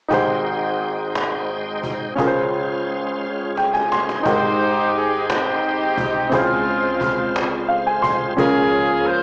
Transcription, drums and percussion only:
0.11 cajon bass
0.45 cajon slap
0.80 cajon slap
1.15 cajon slap
1.49 cajon slap
1.83 cajon bass
2.18 cajon bass
2.53 cajon slap
2.88 cajon slap
3.23 cajon slap
3.57 cajon slap
3.75 cajon slap
3.92 cajon slap
4.09 cajon slap
4.26 cajon bass
4.60 cajon slap
5.30 cajon slap
5.63 cajon slap
5.97 cajon bass
6.32 cajon bass
6.67 cajon slap
7.01 cajon bass
7.36 cajon slap
7.70 cajon slap
8.04 cajon bass
8.38 cajon bass
8.72 cajon slap
9.08 cajon slap

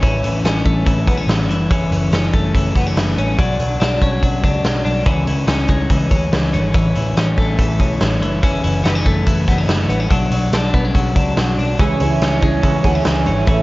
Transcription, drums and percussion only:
0.03 kick, closed hi-hat
0.24 closed hi-hat
0.45 snare, closed hi-hat
0.66 kick, closed hi-hat
0.87 kick, closed hi-hat
1.08 kick, closed hi-hat
1.29 snare, closed hi-hat
1.50 closed hi-hat
1.71 kick, closed hi-hat
1.92 closed hi-hat
2.13 snare, closed hi-hat
2.33 kick, closed hi-hat
2.55 kick, closed hi-hat
2.76 kick, snare, closed hi-hat
2.97 snare, closed hi-hat
3.18 closed hi-hat
3.39 kick, closed hi-hat
3.60 closed hi-hat
3.81 snare, closed hi-hat
4.02 kick, closed hi-hat
4.23 kick, closed hi-hat
4.44 kick, closed hi-hat
4.65 snare, closed hi-hat
4.86 open hi-hat
5.06 kick, closed hi-hat
5.27 closed hi-hat
5.48 snare, closed hi-hat
5.68 kick, closed hi-hat
5.90 kick, closed hi-hat
6.11 kick, closed hi-hat
6.33 snare, closed hi-hat
6.54 closed hi-hat
6.74 kick, closed hi-hat
6.95 closed hi-hat
7.17 snare, closed hi-hat
7.37 kick, closed hi-hat
7.59 kick, closed hi-hat
7.80 kick, closed hi-hat
8.00 snare, closed hi-hat
8.22 closed hi-hat
8.43 kick, closed hi-hat
8.64 closed hi-hat
8.85 snare, closed hi-hat
9.06 kick, closed hi-hat
9.27 kick, closed hi-hat
9.48 kick, snare, closed hi-hat
9.69 snare, closed hi-hat
9.90 closed hi-hat
10.11 kick, closed hi-hat
10.32 closed hi-hat
10.53 snare, closed hi-hat
10.74 kick, closed hi-hat
10.95 kick, closed hi-hat
11.16 kick, closed hi-hat
11.37 snare, closed hi-hat
11.59 open hi-hat
11.79 kick, closed hi-hat
12.00 closed hi-hat
12.21 snare, closed hi-hat
12.42 kick, closed hi-hat
12.63 kick, closed hi-hat
12.84 kick, snare, closed hi-hat
13.05 snare, closed hi-hat
13.26 closed hi-hat
13.47 kick, closed hi-hat

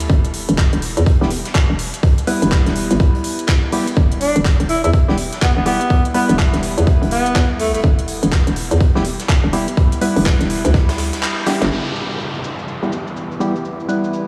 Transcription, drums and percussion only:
0.00 closed hi-hat
0.09 kick, closed hi-hat
0.25 closed hi-hat
0.33 closed hi-hat, open hi-hat
0.49 closed hi-hat
0.58 kick, snare, clap, closed hi-hat
0.73 closed hi-hat
0.82 closed hi-hat, open hi-hat
0.97 closed hi-hat
1.06 kick, closed hi-hat
1.22 snare
1.31 closed hi-hat, open hi-hat
1.45 snare, closed hi-hat
1.55 kick, snare, clap, closed hi-hat
1.79 closed hi-hat, open hi-hat
1.94 closed hi-hat
2.03 kick, closed hi-hat
2.18 closed hi-hat
2.27 closed hi-hat, open hi-hat
2.42 closed hi-hat
2.51 kick, snare, clap, closed hi-hat
2.66 snare, closed hi-hat
2.75 closed hi-hat, open hi-hat
2.91 closed hi-hat
3.00 kick, closed hi-hat
3.15 closed hi-hat
3.24 closed hi-hat, open hi-hat
3.39 closed hi-hat
3.47 kick, snare, clap, closed hi-hat
3.72 open hi-hat
3.87 closed hi-hat
3.97 kick, closed hi-hat
4.12 closed hi-hat
4.21 closed hi-hat, open hi-hat
4.36 closed hi-hat
4.45 kick, snare, clap, closed hi-hat
4.60 closed hi-hat
4.69 closed hi-hat, open hi-hat
4.84 closed hi-hat
4.93 kick, closed hi-hat
5.09 snare
5.18 closed hi-hat, open hi-hat
5.33 snare, closed hi-hat
5.42 kick, snare, clap, closed hi-hat
5.66 closed hi-hat, open hi-hat
5.81 closed hi-hat
5.90 kick, closed hi-hat
6.05 closed hi-hat
6.14 closed hi-hat, open hi-hat
6.29 closed hi-hat
6.39 kick, snare, clap, closed hi-hat
6.54 snare, closed hi-hat
6.63 closed hi-hat, open hi-hat
6.78 closed hi-hat
6.87 kick, closed hi-hat
7.02 closed hi-hat
7.11 closed hi-hat, open hi-hat
7.26 closed hi-hat
7.35 kick, snare, clap, closed hi-hat
7.60 open hi-hat
7.74 closed hi-hat
7.84 kick, closed hi-hat
7.99 closed hi-hat
8.08 closed hi-hat, open hi-hat
8.23 closed hi-hat
8.32 kick, snare, clap, closed hi-hat
8.47 closed hi-hat
8.56 closed hi-hat, open hi-hat
8.71 closed hi-hat
8.80 kick, closed hi-hat
8.95 snare
9.05 closed hi-hat, open hi-hat
9.20 snare, closed hi-hat
9.28 kick, snare, clap, closed hi-hat
9.53 closed hi-hat, open hi-hat
9.68 closed hi-hat
9.77 kick, closed hi-hat
9.92 closed hi-hat
10.01 closed hi-hat, open hi-hat
10.16 open hi-hat
10.25 kick, snare, clap, closed hi-hat
10.41 snare, closed hi-hat
10.50 closed hi-hat, open hi-hat
10.65 closed hi-hat
10.74 kick, snare, closed hi-hat
10.89 snare, closed hi-hat
10.98 snare, closed hi-hat, open hi-hat
11.13 snare, closed hi-hat
11.23 snare, clap, closed hi-hat
11.46 snare, closed hi-hat, open hi-hat
11.62 snare, closed hi-hat
11.71 crash, cabasa
11.86 cabasa
11.96 cabasa
12.11 cabasa
12.20 cabasa
12.35 cabasa
12.44 cabasa
12.59 cabasa
12.68 cabasa
12.83 cabasa
12.92 cabasa
13.07 cabasa
13.17 cabasa
13.32 cabasa
13.41 cabasa
13.56 cabasa
13.65 cabasa
13.80 cabasa
13.89 cabasa
14.04 cabasa
14.13 cabasa

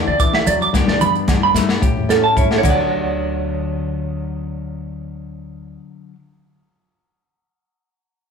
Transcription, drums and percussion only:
0.20 kick, maracas
0.33 snare, low agogo
0.47 muted conga, high conga, maracas
0.62 maracas
0.74 kick, snare, muted conga, low agogo, maracas
0.88 snare
1.01 muted conga, high conga, maracas
1.15 maracas
1.28 kick, snare, high conga, low agogo, maracas
1.54 snare, maracas
1.69 snare, low agogo, maracas
1.82 kick, muted conga, maracas
2.09 snare, low agogo, maracas
2.36 kick, high conga, maracas
2.51 snare, low agogo
2.63 kick, crash, muted conga, low agogo, maracas

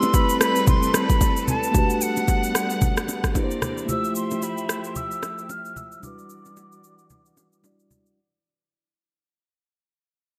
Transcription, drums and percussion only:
0.02 low bongo, shaker
0.14 kick, high bongo, shaker
0.29 shaker
0.41 cross-stick, shaker
0.56 shaker
0.67 kick, low conga, shaker
0.83 shaker
0.94 cross-stick, low bongo, shaker
1.10 kick, shaker
1.21 kick, high bongo, low bongo, shaker
1.37 shaker
1.48 low conga, shaker
1.63 shaker
1.74 kick, low conga, shaker
1.90 shaker
2.01 shaker
2.17 low bongo, shaker
2.28 kick, high bongo, shaker
2.44 shaker
2.55 cross-stick, shaker
2.70 shaker
2.81 kick, low conga, shaker
2.97 cross-stick, shaker
3.08 low bongo, shaker
3.24 kick, cross-stick, shaker
3.35 kick, high bongo, low bongo, shaker
3.51 shaker
3.62 cross-stick, low conga, shaker
3.78 shaker
3.89 low conga, shaker
4.04 shaker
4.15 shaker
4.31 low bongo, shaker
4.42 high bongo, shaker
4.58 shaker
4.69 cross-stick, shaker
4.84 shaker
4.96 low conga, shaker
5.11 shaker
5.23 cross-stick, low bongo, shaker
5.38 shaker
5.49 high bongo, low bongo, shaker
5.65 shaker
5.76 low conga, shaker
5.92 shaker
6.03 low conga, shaker
6.19 shaker
6.30 shaker
6.45 low bongo, shaker
6.57 high bongo, shaker
6.72 shaker
6.84 shaker
6.99 shaker
7.10 low conga, shaker
7.26 shaker
7.37 low bongo, shaker
7.53 shaker
7.64 high bongo, low bongo, shaker
7.79 shaker
7.91 low conga, shaker
8.06 shaker

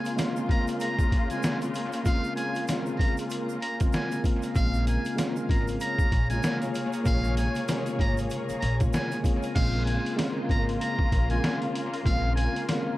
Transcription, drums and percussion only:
0.05 closed hi-hat, shaker
0.18 snare, closed hi-hat, shaker
0.36 shaker
0.49 kick, closed hi-hat
0.68 closed hi-hat, shaker
0.80 closed hi-hat, shaker
0.99 kick, shaker
1.12 kick, closed hi-hat
1.30 closed hi-hat, shaker
1.43 snare, closed hi-hat, shaker
1.62 closed hi-hat, shaker
1.74 closed hi-hat, shaker
1.92 closed hi-hat, shaker
2.05 kick, closed hi-hat, shaker
2.24 shaker
2.37 closed hi-hat, shaker
2.55 closed hi-hat, shaker
2.68 snare, closed hi-hat, shaker
2.86 shaker
2.99 kick, closed hi-hat
3.17 closed hi-hat, shaker
3.30 closed hi-hat, shaker
3.49 shaker
3.62 closed hi-hat
3.80 kick, closed hi-hat, shaker
3.93 snare, closed hi-hat, shaker
4.12 closed hi-hat, shaker
4.24 kick, closed hi-hat, shaker
4.42 closed hi-hat, shaker
4.55 kick, closed hi-hat, shaker
4.74 shaker
4.87 closed hi-hat, shaker
5.05 closed hi-hat, shaker
5.18 snare, closed hi-hat, shaker
5.36 shaker
5.49 kick, closed hi-hat
5.68 closed hi-hat, shaker
5.80 closed hi-hat, shaker
5.99 kick, shaker
6.12 kick, closed hi-hat
6.30 closed hi-hat, shaker
6.43 snare, closed hi-hat, shaker
6.62 closed hi-hat, shaker
6.75 closed hi-hat, shaker
6.93 closed hi-hat, shaker
7.05 kick, closed hi-hat, shaker
7.24 shaker
7.37 closed hi-hat, shaker
7.55 closed hi-hat, shaker
7.68 snare, closed hi-hat, shaker
7.86 closed hi-hat, shaker
7.99 kick, closed hi-hat
8.17 closed hi-hat, shaker
8.30 closed hi-hat, shaker
8.49 closed hi-hat, shaker
8.62 closed hi-hat
8.80 kick, closed hi-hat, shaker
8.93 snare, closed hi-hat, shaker
9.12 closed hi-hat, shaker
9.24 kick, closed hi-hat, shaker
9.43 closed hi-hat, shaker
9.56 kick, closed hi-hat, crash
9.87 closed hi-hat
10.06 closed hi-hat
10.19 snare, closed hi-hat
10.49 kick, closed hi-hat
10.69 closed hi-hat
10.81 closed hi-hat
10.99 kick
11.12 kick, closed hi-hat
11.30 closed hi-hat
11.44 snare, closed hi-hat
11.62 closed hi-hat
11.76 closed hi-hat
11.94 closed hi-hat
12.06 kick, closed hi-hat
12.37 closed hi-hat
12.56 closed hi-hat
12.69 snare, closed hi-hat

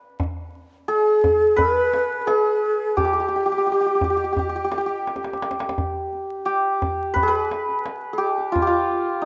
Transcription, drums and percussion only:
0.20 tombak dum
1.24 tombak dum
1.58 tombak dum
1.77 tombak ka
1.94 tombak tek
2.28 tombak tek
2.98 tombak dum
3.33 tombak ka
3.68 tombak ka
4.01 tombak dum
4.37 tombak dum
4.72 tombak tek
5.07 tombak tek
5.16 tombak ka
5.24 tombak tek
5.33 tombak ka
5.42 tombak tek
5.51 tombak ka
5.60 tombak tek
5.69 tombak ka
5.78 tombak dum
6.13 tombak ka
6.82 tombak dum
7.16 tombak dum
7.51 tombak tek
7.69 tombak ka
7.86 tombak tek
8.38 tombak ka
8.56 tombak dum
8.91 tombak ka

